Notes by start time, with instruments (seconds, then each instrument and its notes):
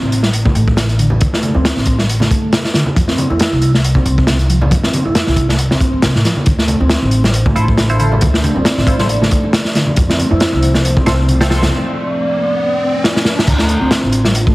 Already playing: tonewheel organ C4
0.01 upright bass A1, high conga
0.12 closed hi-hat
0.23 tonewheel organ G3, snare
0.33 closed hi-hat
0.45 tonewheel organ A3, kick, high conga
0.55 upright bass A1, closed hi-hat
0.68 kick
0.76 snare, closed hi-hat, high conga
0.89 closed hi-hat
0.99 tonewheel organ D3, closed hi-hat
1.10 high conga, low conga
1.21 upright bass D2, tonewheel organ D3, kick, closed hi-hat
1.33 tonewheel organ A3, snare
1.43 closed hi-hat, high conga
1.55 upright bass D2, tonewheel organ C4, low conga
1.65 snare, closed hi-hat
1.76 upright bass A1, snare, high conga
1.86 kick, closed hi-hat
1.99 tonewheel organ G3, snare
2.09 closed hi-hat
2.20 tonewheel organ A3, snare, high conga
2.31 kick, closed hi-hat
2.53 snare, closed hi-hat, high conga
2.64 snare
2.74 tonewheel organ D3, snare, closed hi-hat
2.86 high conga
2.96 upright bass F2, tonewheel organ F3, kick, closed hi-hat
3.08 tonewheel organ C4, snare
3.18 closed hi-hat, high conga
3.30 upright bass F2, tonewheel organ E4, low conga
3.40 snare, closed hi-hat
3.52 upright bass C2, high conga
3.62 closed hi-hat
3.74 tonewheel organ A3, snare
3.84 closed hi-hat
3.95 tonewheel organ C4, kick, high conga
4.05 upright bass C2, closed hi-hat
4.18 kick
4.27 snare, closed hi-hat, high conga
4.39 closed hi-hat
4.50 tonewheel organ F3, closed hi-hat
4.61 high conga, low conga
4.71 upright bass F2, tonewheel organ F3, kick, closed hi-hat
4.83 tonewheel organ C4, snare
4.93 closed hi-hat, high conga
5.05 upright bass F2, tonewheel organ E4, low conga
5.15 snare, closed hi-hat
5.27 upright bass C2, snare, high conga
5.36 kick, closed hi-hat
5.49 tonewheel organ A3, snare
5.59 closed hi-hat
5.71 tonewheel organ C4, snare, high conga
5.81 kick, closed hi-hat
5.93 upright bass F2
6.02 upright bass C2, snare, closed hi-hat, high conga
6.15 upright bass A2, snare
6.25 tonewheel organ F3, snare, closed hi-hat
6.37 high conga
6.46 upright bass D2, tonewheel organ D3, analog synth pad F3 A3 D4 C5, kick, closed hi-hat
6.59 tonewheel organ A3, snare
6.68 closed hi-hat, muted conga, high conga
6.80 upright bass D2, tonewheel organ C4, low conga
6.90 snare, closed hi-hat
7.02 upright bass A1, high conga
7.11 closed hi-hat
7.24 tonewheel organ G3, snare, muted conga
7.34 closed hi-hat
7.46 tonewheel organ A3, kick, high conga
7.56 upright bass A1, synth stab E4 F4 A4 C5, closed hi-hat
7.68 kick
7.77 snare, closed hi-hat, high conga
7.89 synth stab E4 F4 A4 C5, closed hi-hat
7.99 tonewheel organ D3, synth stab E4 F4 A4 C5, closed hi-hat, muted conga
8.12 high conga, low conga
8.21 upright bass D2, tonewheel organ D3, analog synth pad D5, kick, closed hi-hat
8.33 tonewheel organ A3, snare
8.43 closed hi-hat, muted conga, high conga
8.55 upright bass D2, tonewheel organ C4, low conga
8.65 snare, closed hi-hat
8.78 upright bass A1, snare, high conga
8.87 synth stab E4 F4 A4 C5, kick, closed hi-hat
8.99 tonewheel organ G3, synth stab E4 F4 A4 C5, snare, muted conga
9.09 closed hi-hat
9.21 tonewheel organ A3, snare, high conga
9.31 kick, closed hi-hat
9.43 muted conga
9.53 snare, closed hi-hat, high conga
9.65 snare
9.75 tonewheel organ D3, snare, closed hi-hat
9.86 high conga
9.96 upright bass F2, tonewheel organ F3, analog synth pad C4 C5, kick, closed hi-hat, riser
10.09 tonewheel organ C4, snare
10.18 closed hi-hat, muted conga, high conga
10.31 upright bass F2, tonewheel organ E4, low conga
10.40 snare, closed hi-hat
10.52 upright bass C2, high conga
10.63 closed hi-hat
10.74 tonewheel organ A3, snare, muted conga
10.85 closed hi-hat
10.97 tonewheel organ C4, kick, high conga
11.06 upright bass C2, synth stab C4 F4 A4 C5, snare, closed hi-hat
11.28 closed hi-hat, high conga
11.41 synth stab C4 F4 A4 C5, snare, closed hi-hat
11.49 tonewheel organ F3, synth stab C4 F4 A4 C5, snare, closed hi-hat, muted conga
11.62 snare, closed hi-hat, high conga, low conga
11.72 analog synth pad D5
13.04 snare
13.16 snare
13.25 snare
13.39 snare
13.47 upright bass D2, tonewheel organ D3, analog synth pad A3 D4 F4 C5, kick, closed hi-hat, crash
13.59 tonewheel organ A3, snare
13.69 closed hi-hat
13.81 upright bass D2, tonewheel organ C4
13.91 snare, closed hi-hat
14.03 upright bass A1
14.13 closed hi-hat
14.25 tonewheel organ G3, snare
14.35 closed hi-hat
14.47 tonewheel organ A3, kick